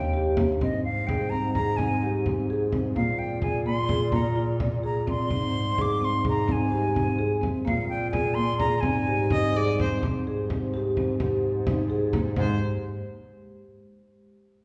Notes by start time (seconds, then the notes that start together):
Already playing: D#2 D4 D#4 G4 G5
0.13 G4
0.37 A#3, frame drum
0.61 G#2 G3 G#3 C4 C5 D#5, frame drum
0.85 F5
1.07 G#4 G5, frame drum
1.30 C4 A#5
1.54 G#4 A#5, frame drum
1.77 C4 G#5, frame drum
2.03 G4
2.26 C4, frame drum
2.50 G#4
2.72 C4, frame drum
2.96 A#2 A#3 G#4 D5 F5, frame drum
3.19 G5
3.42 G#4 G#5, frame drum
3.66 A#3 C6
3.89 G#4, frame drum
4.12 A#3 A#5, frame drum
4.36 F4, frame drum
4.60 A#3, frame drum
4.83 G#4 A#5
5.07 C4 C6, frame drum
5.30 G#2 G3 G#3 C4 C5, frame drum
5.78 G#4 D6, frame drum
6.01 C4 C6
6.25 G#4, frame drum
6.29 A#5
6.48 C4 G#5, frame drum
6.72 G4
6.95 C4, frame drum
7.19 G#4
7.42 C4, frame drum
7.65 A#2 A#3 G#4 D5 F5, frame drum
7.89 G5
8.11 G#4 G#5, frame drum
8.35 A#3 C6
8.58 G#4 A#5, frame drum
8.81 G#2 G3 G#3 C4 C5 G#5, frame drum
9.06 G4, frame drum
9.30 C4 D#5, frame drum
9.55 G#4 D5, frame drum
9.80 C4 C5, frame drum
10.03 G#2 G#3 C4 G4 C5, frame drum
10.27 G#4
10.50 C4, frame drum
10.74 G4
10.97 C4, frame drum
11.20 G4, frame drum
11.67 D#4, frame drum
11.90 G#4
12.13 A#3, frame drum
12.36 G#2 G#3 G4 C5, frame drum